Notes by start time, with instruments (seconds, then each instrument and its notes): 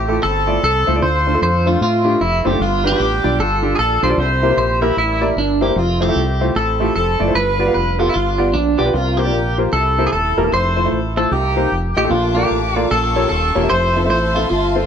Already playing: fingered electric bass A1, horn section A3 C4 E4 G4, clean electric guitar G4
0.08 grand piano A3 E4 F4 A4
0.23 fingered electric bass G1, horn section C4 E4 A4, clean electric guitar A4
0.47 grand piano A3 E4 F4 D5
0.63 fingered electric bass C2, horn section C4 E4 A4, clean electric guitar A4
0.87 fingered electric bass C#2, grand piano A3 E4 F4 C5
0.95 grand piano A3 E4 F4 D5
1.02 fingered electric bass D2, grand piano D3, horn section F4 A4 C5, clean electric guitar C5
1.27 grand piano A3 D4 F4 C5
1.34 grand piano A3 D4 F4 A4
1.42 fingered electric bass F2, horn section C5, clean electric guitar C5
1.66 grand piano A3 D4 F4 C5, clean electric guitar F4, horn section F4
1.81 fingered electric bass A2, horn section A3 C4 F4, clean electric guitar F4
2.04 grand piano A3 D4 F4 G4
2.21 fingered electric bass F1, clean electric guitar E4, horn section E4
2.45 fingered electric bass F#1, grand piano A3 D4 F4 C5, horn section G4, clean electric guitar G4
2.52 grand piano A3 D4 F4 A4
2.59 fingered electric bass G1, grand piano G2, horn section B3 D4 F4, clean electric guitar F4
2.84 grand piano G3 D4 F4 B4, horn section B3 D4 G4, clean electric guitar G4
2.91 grand piano G3 D4 F4 B4
3.00 fingered electric bass A1
3.24 fingered electric bass B1, grand piano G3 D4 F4 D5
3.39 fingered electric bass G1, horn section D4 F4 A4, clean electric guitar A4
3.63 grand piano G3 D4 F4 G4
3.75 fingered electric bass A#1, horn section D4, clean electric guitar G#4 A4
3.80 horn section F4 A4
4.03 fingered electric bass B1, grand piano G3 D4 F4 G4, clean electric guitar C5
4.10 grand piano G3 D4 F4 D5
4.18 fingered electric bass C2, grand piano C3, horn section E4 G4 C5
4.43 grand piano A#3 E4 G4 C5
4.50 grand piano A#3 E4 G4 C5
4.57 fingered electric bass A#1, clean electric guitar C5, horn section C5
4.82 grand piano A#3 E4 G4 A#4, clean electric guitar E4, horn section E4
4.97 fingered electric bass A1, horn section G3 A#3 E4, clean electric guitar E4
5.21 grand piano A#3 E4 G4 D5
5.36 fingered electric bass G1, clean electric guitar D4, horn section D4
5.61 grand piano A#3 E4 G4 C5, clean electric guitar G4
5.69 grand piano A#3 E4 G4 C5
5.76 fingered electric bass F1, horn section A3 C4 F4, clean electric guitar F4
6.00 grand piano A3 E4 F4 C5, horn section C4 E4 G4, clean electric guitar G4
6.08 grand piano A3 E4 F4 A4
6.16 fingered electric bass C2
6.41 grand piano A3 E4 F4 C5
6.55 fingered electric bass A1, horn section C4 E4 A4, clean electric guitar A4
6.80 grand piano A3 E4 F4 G4
6.95 fingered electric bass F1, horn section C4 E4 A4, clean electric guitar A4
7.20 fingered electric bass F#1, grand piano A3 E4 F4 D5
7.27 grand piano A3 E4 F4 C5
7.35 fingered electric bass G1, grand piano G2, horn section D4 F4 B4, clean electric guitar B4
7.59 grand piano B3 F4 G4 D5
7.66 grand piano B3 F4 G4 F5
7.74 fingered electric bass F1, clean electric guitar B4, horn section B4
7.99 grand piano B3 F4 G4 A4, clean electric guitar F4, horn section F4
8.09 clean electric guitar E4
8.14 fingered electric bass G1, horn section B3 D4 F4, clean electric guitar F4
8.38 grand piano B3 F4 G4 D5
8.54 fingered electric bass A#1, clean electric guitar D4, horn section D4
8.78 fingered electric bass B1, grand piano B3 F4 G4 D5, clean electric guitar G4, horn section G4
8.86 grand piano B3 F4 G4 B4
8.93 fingered electric bass C2, grand piano C3, horn section A#3 F4, clean electric guitar F4
9.17 grand piano A#3 F4 G4 C5, horn section A#3 G4, clean electric guitar G4
9.25 grand piano A#3 F4 G4 D5
9.33 fingered electric bass A#1
9.58 grand piano A#3 F4 G4 C5
9.73 fingered electric bass C2, grand piano C3, horn section E4 A4, clean electric guitar A4
9.98 grand piano A#3 E4 G4 C5
10.07 clean electric guitar G#4
10.12 fingered electric bass D#1, horn section E4 A4, clean electric guitar A4
10.37 fingered electric bass E1, grand piano A#3 E4 G4 A#4
10.44 grand piano A#3 E4 G4 A#4
10.52 fingered electric bass F1, horn section E4 A4 C5, clean electric guitar C5
10.76 grand piano A3 E4 F4 C5
10.85 grand piano A3 E4 F4 C5
10.92 fingered electric bass A1
11.16 grand piano A3 E4 F4 C5, horn section A4, clean electric guitar A4
11.31 fingered electric bass C2, grand piano C3, horn section A#3 D#4 G4, clean electric guitar G4
11.56 grand piano A#3 D#4 G4 C5
11.71 fingered electric bass F1
11.95 fingered electric bass A1, grand piano A3 F4 G4 D#5, horn section G4, clean electric guitar G4
12.04 grand piano A3 F4 G4 A4
12.11 fingered electric bass A#1, grand piano A#2, horn section A3 D4 F4, clean electric guitar F4, string section F5 A5 D6
12.35 grand piano A#3 F4 A4 D5, clean electric guitar G4
12.44 grand piano A#3 F4 A4 F5
12.51 fingered electric bass A1
12.76 grand piano A#3 F4 A4 D5, clean electric guitar F4
12.91 fingered electric bass A#1, grand piano A#2, horn section C#4 F4 A4, clean electric guitar A4, string section G5 C#6
13.16 grand piano A#3 F4 G4 C#5
13.29 fingered electric bass D#1, horn section C#4 F4 A4, clean electric guitar A4
13.55 fingered electric bass E1, grand piano A#3 F4 G4 C#5
13.63 grand piano A#3 F4 G4 E5
13.70 fingered electric bass F1, horn section E4 A4 C5, clean electric guitar C5, string section E5 A5 C6
13.96 grand piano C4 F4 A4 E5
14.04 grand piano C4 F4 A4 E5, horn section C5
14.10 fingered electric bass A1, clean electric guitar C5
14.33 grand piano C4 F4 A4 E5, horn section F4, clean electric guitar F4
14.48 fingered electric bass G1, horn section A3 C4 F4, clean electric guitar F4
14.76 grand piano C4 F4 A4 C5